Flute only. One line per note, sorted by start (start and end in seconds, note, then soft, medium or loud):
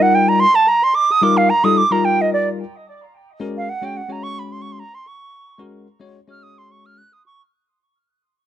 0.02 0.16 F#5 medium
0.15 0.30 G5 medium
0.29 0.41 A#5 medium
0.40 0.57 C6 medium
0.55 0.70 A5 medium
0.68 0.85 A#5 medium
0.84 0.96 C6 medium
0.95 1.13 D6 medium
1.12 1.24 D#6 medium
1.23 1.39 D6 medium
1.37 1.51 F5 medium
1.50 1.66 A#5 medium
1.64 1.79 D#6 medium
1.77 1.93 D6 medium
1.92 2.06 A#5 medium
2.05 2.23 G5 medium
2.21 2.33 D#5 medium
2.33 2.49 D5 medium
3.57 3.71 F5 medium
3.69 3.86 F#5 medium
3.85 3.98 G5 medium
3.97 4.14 F#5 medium
4.12 4.25 A#5 medium
4.23 4.41 C#6 loud
4.39 4.54 B5 medium
4.52 4.63 C6 medium
4.62 4.74 C#6 medium
4.72 4.81 C6 medium
4.80 4.96 A#5 medium
4.95 5.09 C6 medium
5.07 5.61 C#6 medium
6.31 6.45 F6 medium
6.43 6.60 D#6 medium
6.58 6.73 C6 medium
6.72 6.87 C#6 medium
6.86 6.99 F6 medium
6.98 7.15 F#6 medium
7.13 7.25 D#6 medium
7.26 7.42 C#6 medium